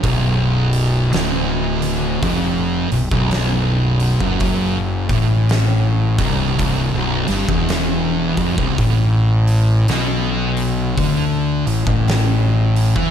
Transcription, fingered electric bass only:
X:1
M:4/4
L:1/16
Q:"Swing" 1/4=55
K:Bm
V:1 name="Fingered electric bass" clef=bass
B,,,,4 D,,,4 ^E,,,2 B,,,, B,,,,4 F,,,- | F,,,2 A,,,4 =C,,,2 C,,, B,,,, G,,, E,,,3 ^E,,, C,,, | A,,,4 B,,,4 D,,2 A,,, A,,,4 E,, |]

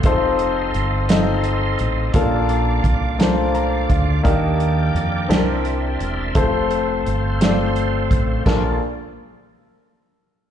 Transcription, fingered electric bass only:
X:1
M:6/8
L:1/8
Q:3/8=57
K:Bb
V:1 name="Fingered electric bass" clef=bass
F,,,2 G,,,3 A,,, | B,,,2 C,,3 D,, | E,,2 F,, C,,2 =E,,, | F,,,2 G,,,3 A,,, |
B,,, z4 z |]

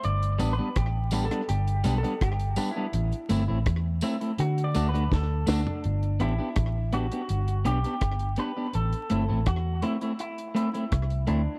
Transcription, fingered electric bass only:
X:1
M:4/4
L:1/16
Q:1/4=83
K:G
V:1 name="Fingered electric bass" clef=bass
G,,,2 A,,, z A,,,3 z G,,,2 B,,, z G,,,2 z2 | A,,, z G,,, A,,, E,,2 z2 D,2 D,,2 D,,2 D,, z | G,,,2 A,,, z A,,,3 z G,,,2 B,,, z G,,,2 z2 | A,,, z G,,, A,,, E,,2 z6 C,,2 D,, z |]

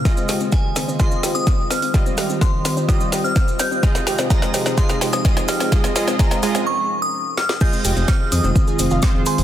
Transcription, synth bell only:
X:1
M:4/4
L:1/16
Q:1/4=127
K:Fm
V:1 name="Synth bell"
z4 a4 c'3 e'3 f'2 | z4 c'4 e'3 f'3 g'2 | z4 b4 c'3 e'3 f'2 | z4 b4 d'3 e'3 f'2 |
g'4 f'2 e'8 c'2 |]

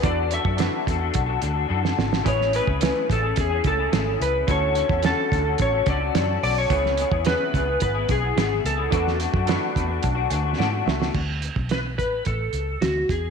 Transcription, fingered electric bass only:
X:1
M:4/4
L:1/16
Q:1/4=108
K:Dlyd
V:1 name="Fingered electric bass" clef=bass
E,,3 F,,2 z E,,2 B,,,2 D,,2 F,,2 G,,,2 | A,,,3 C,,2 z A,,,2 E,,2 C,,2 G,,,2 C,,2 | D,,3 E,,2 z D,,2 A,,,2 C,,2 F,,2 B,,,2 | C,,3 E,,2 z C,,2 G,,,2 B,,,2 G,,,2 C,,2 |
E,,3 F,,2 z E,,2 B,,,2 D,,2 G,,2 C,,2 | D,,3 B,,,3 A,,,2 A,,,2 C,,2 D,,2 E,,2 |]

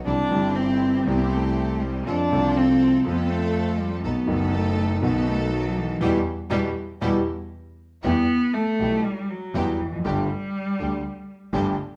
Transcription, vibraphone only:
X:1
M:4/4
L:1/8
Q:1/4=121
K:Em
V:1 name="Vibraphone"
z8 | z8 | z8 | [EGB] z [EGB] z [EGB] z3 |
z8 | z8 |]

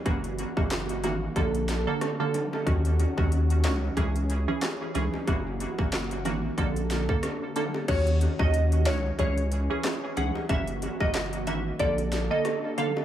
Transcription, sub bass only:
X:1
M:4/4
L:1/16
Q:"Swing 16ths" 1/4=92
K:Ebphr
V:1 name="Sub bass" clef=bass
G,,,3 G,,,3 A,,,2 B,,,4 z4 | E,,3 E,,3 D,,2 D,,4 z2 D,, z | G,,,3 G,,,3 A,,,2 B,,,4 z4 | E,,3 E,,3 D,,2 D,,4 z2 D,, z |
G,,,3 G,,,3 A,,,2 B,,,4 z4 |]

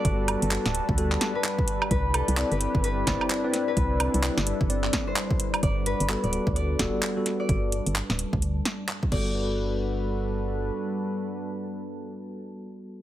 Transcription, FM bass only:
X:1
M:4/4
L:1/16
Q:"Swing 16ths" 1/4=129
K:G
V:1 name="FM bass" clef=bass
G,,,3 G,,, z D,,, z D,,3 z6 | C,,3 C,, z G,,, z G,,,3 G,,, z4 z | C,,3 C,, z G,,, z G,,,3 z6 | G,,,3 G,,, z D,,, z D,,3 D,,, z4 z |
G,,,3 G,,, z D,,, z D,,3 z4 G,,,2- | G,,,12 z4 | z16 |]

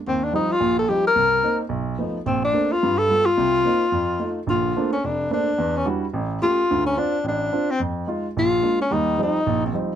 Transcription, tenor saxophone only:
X:1
M:4/4
L:1/8
Q:"Swing" 1/4=217
K:Bb
V:1 name="Tenor saxophone"
C D E F2 A G B- | B3 z4 z | C D2 F2 A2 F- | F6- F z |
F3 _D =D2 D2- | D _D z4 ^E2- | ^E _D =D2 D3 C | z4 F3 _D |
E2 E3 C z2 |]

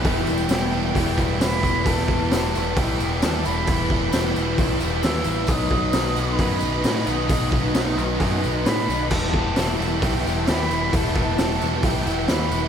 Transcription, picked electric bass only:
X:1
M:4/4
L:1/8
Q:1/4=133
K:Em
V:1 name="Picked electric bass" clef=bass
E,,, E,,, E,,,2 E,,, E,,, E,,, E,,, | E,,,2 E,,, E,,, B,,, E,,, ^D,, E,,, | E,,,2 E,,, E,,, B,,, E,,, ^D,, A,,, | B,,,2 B,,, B,,, F,, B,,, A,, B,,, |
B,,,2 B,,, B,,, F,, B,,, A,, B,,, | E,,,2 E,,, E,,, B,,, E,,, ^D,, E,,, | E,,,2 E,,, E,,, B,,, E,,, ^D,, E,,, |]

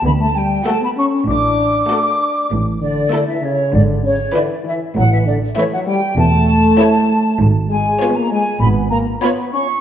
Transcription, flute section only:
X:1
M:4/4
L:1/16
Q:1/4=98
K:Amix
V:1 name="Flute section"
b a g2 a b c'2 d'8 | z2 d3 e c2 d2 c2 d2 e2 | f e d2 e f g2 a8 | [K:C#mix] z2 g3 a g2 b2 a2 b2 c'2 |]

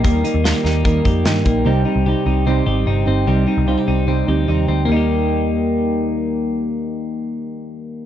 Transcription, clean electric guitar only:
X:1
M:4/4
L:1/16
Q:1/4=149
K:Eb
V:1 name="Clean electric guitar"
[B,EG]2 E2 F G E2 B,2 G2 E2 B,2 | G,2 E2 G2 E2 C2 G2 E2 C2 | G,2 E2 F G E2 C2 G2 E2 C2 | [B,EG]16- |
[B,EG]16 |]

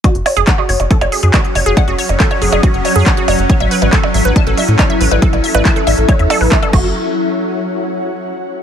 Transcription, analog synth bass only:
X:1
M:4/4
L:1/16
Q:1/4=139
K:F#m
V:1 name="Analog synth bass" clef=bass
z F,,, z F,,, z2 F,,, F,,, z F,,, z F,, z2 F,,, F,,, | z F,,, z F,,, z2 F,,, F,,, z F,,, z F,, z2 F,,, F,,, | z A,,, z A,,, z2 A,,, A,,, z A,,, z A,, z2 A,,, A,,, | z A,,, z A,,, z2 A,,, A,,, z E,, z A,,, z2 F,,,2 |
z16 |]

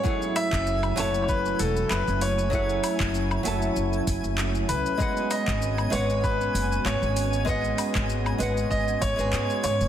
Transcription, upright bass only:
X:1
M:4/4
L:1/16
Q:"Swing 16ths" 1/4=97
K:F#dor
V:1 name="Upright bass" clef=bass
z3 F,,,3 F,,,4 E,,, z F,,, F,,,3- | F,,,2 z F,,,3 F,,, z F,,, z F,,, F,,,3 C,, z | z3 G,,,3 G,,,4 F,,, z G,,, G,,,3- | G,,,2 z G,,,3 G,,, z G,,, z G,,, G,,, G,, z G,, F,,, |]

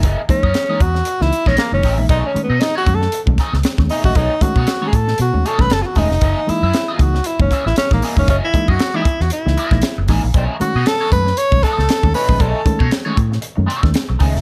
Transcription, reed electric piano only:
X:1
M:4/4
L:1/16
Q:"Swing 16ths" 1/4=116
K:B
V:1 name="Reed electric piano"
z2 [E,G,A,D] [A,D] z [E,G,A,D] z3 [E,G,A,D] z [E,G,A,D] z [E,G,A,D] z [E,G,A,D] | z [=A,C] [D,G,A,C] z B,, z [D,G,A,C] [A,C] z [D,G,A,C] z B,, z [D,G,A,C] B,, [D,G,A,C] | z2 [D,G,=A,C] [A,C] z [D,G,A,C] z B,, z [D,G,A,C] B,, [D,G,A,C] B,, z [D,G,A,C] [A,C] | z [A,D] [E,G,A,D] z3 [E,G,A,D] [A,D] z [E,G,A,D] z3 [E,G,A,D] z [E,G,A,D] |
z2 [E,G,A,D] [A,D] z [E,G,A,D] z3 [E,G,A,D] z [E,G,A,D] z2 [E,G,A,D] [A,D] | z [=A,C] [D,G,A,C] z B,, z [D,G,A,C] [A,C] z [D,G,A,C] z B,, z [D,G,A,C] B,, [D,G,A,C] | B,, z [D,G,=A,C] z2 [D,G,A,C] z B,, z [D,G,A,C] B,, [D,G,A,C] [A,C] B,, [D,G,A,C] z |]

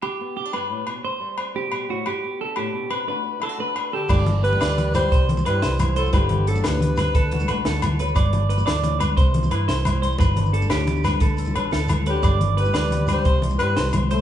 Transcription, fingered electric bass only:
X:1
M:12/8
L:1/8
Q:3/8=118
K:G
V:1 name="Fingered electric bass" clef=bass
z12 | z12 | G,,,3 D,,3 C,,2 G,, C,,3 | G,,,3 D,,3 D,,2 A,,, D,,3 |
G,,,3 D,,3 C,,2 G,, C,,3 | G,,,3 D,,3 D,,2 A,,, D,,3 | G,,,3 D,,3 C,,2 G,, C,,3 |]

